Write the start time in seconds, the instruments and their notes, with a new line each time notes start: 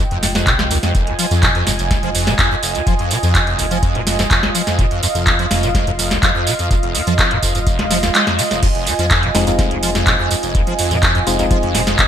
Already playing: analog synth pad F4 D#5 G5
0.11 analog synth bass F1, acid bass F2, closed hi-hat
0.23 acid bass F2, snare, open hi-hat, tambourine
0.35 acid bass F2, snare, closed hi-hat, tambourine
0.47 analog synth bass C2, acid bass C3, kick, clap, closed hi-hat, tambourine
0.59 acid bass F3, snare
0.71 acid bass D#2, open hi-hat, tambourine
0.83 acid bass F2, snare, closed hi-hat, tambourine
0.95 analog synth bass F1, acid bass F1, analog synth pad G#5, kick, closed hi-hat, tambourine
1.07 acid bass F2, closed hi-hat
1.19 acid bass F3, open hi-hat, tambourine
1.31 analog synth bass F2, acid bass F2, closed hi-hat, tambourine
1.43 acid bass C3, kick, clap, closed hi-hat, tambourine
1.55 acid bass F2, closed hi-hat
1.67 analog synth bass F1, acid bass F2, snare, open hi-hat, tambourine
1.79 acid bass F1, closed hi-hat, tambourine
1.91 acid bass F2, kick, snare, closed hi-hat, tambourine
2.03 analog synth bass F1, acid bass F3, closed hi-hat
2.15 acid bass F2, open hi-hat, tambourine
2.27 acid bass C3, snare, closed hi-hat, tambourine
2.39 analog synth bass F2, acid bass F2, kick, clap, closed hi-hat, tambourine
2.51 acid bass F2
2.63 acid bass F1, open hi-hat, tambourine
2.75 acid bass F2, closed hi-hat, tambourine
2.87 analog synth bass F1, acid bass F3, kick, closed hi-hat, tambourine
2.99 acid bass F2, closed hi-hat
3.11 acid bass C3, open hi-hat, tambourine
3.23 analog synth bass F2, acid bass F2, closed hi-hat, tambourine
3.35 acid bass F2, kick, clap, closed hi-hat, tambourine
3.47 acid bass F1, closed hi-hat
3.59 analog synth bass F1, acid bass F2, open hi-hat, tambourine
3.71 acid bass F3, closed hi-hat, tambourine
3.83 acid bass F2, kick, closed hi-hat, tambourine
3.95 analog synth bass F1, acid bass C3, closed hi-hat
4.07 acid bass F2, snare, open hi-hat, tambourine
4.19 acid bass F2, snare, closed hi-hat, tambourine
4.31 acid bass F1, analog synth bass F2, kick, clap, closed hi-hat, tambourine
4.43 acid bass F2, snare
4.55 acid bass F3, open hi-hat, tambourine
4.67 acid bass F2, snare, closed hi-hat, tambourine
4.79 analog synth bass F1, acid bass C3, analog synth pad F5, kick, closed hi-hat, tambourine
4.91 acid bass F2, closed hi-hat
5.03 acid bass F2, open hi-hat, tambourine
5.15 acid bass F1, analog synth bass F2, closed hi-hat, tambourine
5.27 acid bass F2, kick, clap, closed hi-hat, tambourine
5.39 acid bass F3, closed hi-hat
5.51 analog synth bass F1, acid bass F2, snare, open hi-hat, tambourine
5.63 acid bass C3, closed hi-hat, tambourine
5.75 acid bass F2, kick, snare, closed hi-hat, tambourine
5.87 analog synth bass F1, acid bass F2, closed hi-hat
5.99 acid bass F1, open hi-hat, tambourine
6.11 acid bass F2, snare, closed hi-hat, tambourine
6.23 analog synth bass F2, acid bass F3, kick, clap, closed hi-hat, tambourine
6.35 acid bass F2
6.47 acid bass C3, open hi-hat, tambourine
6.59 acid bass F2, closed hi-hat, tambourine
6.71 analog synth bass F1, acid bass F2, kick, closed hi-hat, tambourine
6.83 acid bass F1, closed hi-hat
6.95 acid bass F2, open hi-hat, tambourine
7.07 analog synth bass F2, acid bass F3, closed hi-hat, tambourine
7.19 acid bass F2, kick, clap, closed hi-hat, tambourine
7.31 acid bass C3, closed hi-hat
7.43 analog synth bass F1, acid bass F2, kick, open hi-hat, tambourine
7.55 acid bass F2, closed hi-hat, tambourine
7.67 acid bass F1, kick, closed hi-hat, tambourine
7.79 analog synth bass F1, acid bass F2, snare, closed hi-hat
7.91 acid bass F3, snare, open hi-hat, tambourine
8.03 acid bass D#2, snare, closed hi-hat, tambourine
8.15 acid bass G#3, clap, closed hi-hat, tambourine
8.27 acid bass F2, snare, closed hi-hat
8.39 acid bass F3, open hi-hat, tambourine
8.51 acid bass F1, snare, closed hi-hat, tambourine
8.63 analog synth bass F1, acid bass F2, analog synth pad G#5, kick, closed hi-hat, tambourine, crash
8.75 acid bass F1, closed hi-hat
8.87 acid bass F2, open hi-hat, tambourine
8.99 analog synth bass F2, acid bass F3, closed hi-hat, tambourine
9.11 acid bass F2, kick, clap, closed hi-hat, tambourine
9.23 acid bass C3, closed hi-hat
9.35 analog synth bass F1, acid bass F2, synth stab G#3 C4 D#4 F4, snare, open hi-hat, tambourine
9.47 acid bass F2, synth stab G#3 C4 D#4 F4, closed hi-hat, tambourine
9.59 acid bass F1, kick, snare, closed hi-hat, tambourine
9.71 analog synth bass F1, acid bass F2, closed hi-hat
9.83 acid bass F3, open hi-hat, tambourine
9.95 acid bass F2, snare, closed hi-hat, tambourine
10.07 analog synth bass F2, acid bass C3, kick, clap, closed hi-hat, tambourine
10.19 acid bass F2
10.31 acid bass F2, open hi-hat, tambourine
10.43 acid bass F1, closed hi-hat, tambourine
10.55 analog synth bass F1, acid bass F2, kick, closed hi-hat, tambourine
10.67 acid bass F3, closed hi-hat
10.79 acid bass F2, open hi-hat, tambourine
10.91 analog synth bass F2, acid bass C3, closed hi-hat, tambourine
11.03 acid bass F2, kick, clap, closed hi-hat, tambourine
11.15 acid bass F2, closed hi-hat
11.27 analog synth bass F1, acid bass F1, synth stab G#3 C4 D#4 F4, open hi-hat, tambourine
11.39 acid bass F2, synth stab G#3 C4 D#4 F4, closed hi-hat, tambourine
11.51 acid bass F3, kick, closed hi-hat, tambourine
11.63 analog synth bass F1, acid bass F2, closed hi-hat
11.75 acid bass C3, snare, open hi-hat, tambourine
11.87 acid bass F2, snare, closed hi-hat, tambourine
11.99 acid bass F2, analog synth bass F2, kick, clap, closed hi-hat, tambourine